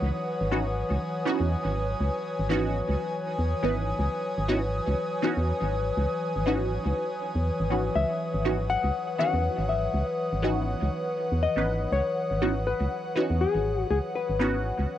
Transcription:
Already playing: synth stab E3 B3 C#4 D#4 B4, ambient pad E3 B4 F#5 D#6, analog synth pad F#3 B4 C#5 D#6
0.02 fm bass C#2, analog synth pad G#5
0.41 fm bass G#1
0.51 synth stab E3 B3 C#4 D#4 F#4
0.91 fm bass C#2
1.23 synth stab E3 B3 C#4 D#4 F#4, ambient pad G#5
1.40 fm bass E2
1.65 fm bass G#1
2.01 fm bass C#2
2.39 fm bass G#1
2.49 synth stab E3 B3 C#4 D#4 F#4
2.89 fm bass C#2
3.39 fm bass E2
3.62 fm bass G#1, synth stab E3 B3 C#4 D#4 B4
3.99 fm bass C#2
4.38 fm bass G#1
4.48 synth stab E3 B3 C#4 D#4 F#4
4.88 fm bass C#2
5.22 synth stab E3 B3 C#4 D#4 F#4
5.37 fm bass E2
5.62 fm bass G#1
5.97 fm bass C#2
6.36 fm bass G#1
6.46 synth stab E3 B3 C#4 D#4 F#4
6.86 fm bass C#2
7.35 fm bass E2
7.60 fm bass G#1
7.70 synth stab D#3 E3 B3 C#4 F#4
7.95 fm bass C#2, hollow-body jazz guitar E5, analog synth pad F#5
8.34 fm bass G#1
8.45 synth stab E3 B3 C#4 D#4 F#4
8.70 hollow-body jazz guitar F#5
8.84 fm bass C#2
9.16 synth stab D#3 E3 B3 C#4, ambient pad F#5, hollow-body jazz guitar F#5
9.20 synth stab F#4
9.34 fm bass E2
9.58 fm bass G#1
9.69 hollow-body jazz guitar E5
9.94 fm bass C#2
10.33 fm bass G#1
10.42 synth stab E3 B3 C#4 D#4 F#4
10.82 fm bass C#2
11.32 fm bass E2
11.43 hollow-body jazz guitar D#5
11.56 fm bass G#1, synth stab E3 B3 C#4 D#4 B4
11.92 fm bass C#2, hollow-body jazz guitar C#5
12.31 fm bass G#1
12.41 synth stab E3 B3 C#4 D#4 F#4
12.67 hollow-body jazz guitar B4
12.81 fm bass C#2
13.15 synth stab E3 B3 C#4 D#4 F#4
13.30 fm bass E2
13.41 hollow-body jazz guitar G#4
13.55 fm bass G#1
13.91 fm bass C#2, hollow-body jazz guitar G#4
14.15 hollow-body jazz guitar B4
14.30 fm bass G#1
14.39 synth stab E3 B3 C#4 D#4 F#4
14.79 fm bass C#2

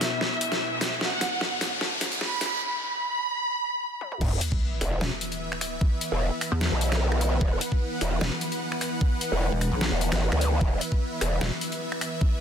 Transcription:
Already playing: supersaw synth B2 B3 E4 E5, violin section E5, riser
0.01 snare, closed hi-hat
0.21 snare
0.41 closed hi-hat
0.52 snare, closed hi-hat
0.81 snare, closed hi-hat
1.01 violin section F#5, snare
1.21 snare, closed hi-hat
1.41 snare
1.61 snare, closed hi-hat
1.81 violin section A5, snare
2.01 snare, closed hi-hat
2.12 closed hi-hat
2.21 violin section B5, snare
2.41 snare, closed hi-hat
2.81 violin section B5
4.01 high tom
4.12 mid tom
4.21 wobble bass E1, supersaw synth E3 B3 B4 E5, kick, crash, sub drop
4.41 closed hi-hat
4.52 kick
4.81 wobble bass E1, finger snap, closed hi-hat
5.01 wobble bass E1, snare
5.21 closed hi-hat
5.32 closed hi-hat
5.52 finger snap
5.61 finger snap, closed hi-hat
5.81 kick
6.01 closed hi-hat
6.12 wobble bass E1
6.41 finger snap, closed hi-hat
6.52 wobble bass E2
6.61 snare
6.72 wobble bass B1
6.81 closed hi-hat
6.92 finger snap, snare, closed hi-hat
7.12 finger snap
7.21 closed hi-hat
7.41 wobble bass E1, supersaw synth F#5, kick
7.61 closed hi-hat
7.72 kick
8.01 wobble bass E1, finger snap, closed hi-hat
8.21 wobble bass E1, snare
8.41 closed hi-hat
8.52 closed hi-hat
8.72 finger snap
8.81 finger snap, closed hi-hat
9.01 kick
9.21 closed hi-hat
9.32 wobble bass E1
9.52 wobble bass E1
9.61 finger snap, closed hi-hat
9.72 wobble bass B1
9.81 snare
9.92 wobble bass E1
10.01 closed hi-hat
10.12 wobble bass G1, finger snap, snare, closed hi-hat
10.32 wobble bass D2, finger snap
10.41 closed hi-hat
10.61 wobble bass E1, supersaw synth E5, kick
10.81 closed hi-hat
10.92 kick
11.21 wobble bass E1, finger snap, closed hi-hat
11.41 wobble bass E1, snare
11.61 closed hi-hat
11.72 closed hi-hat
11.92 finger snap
12.01 finger snap, closed hi-hat
12.21 kick

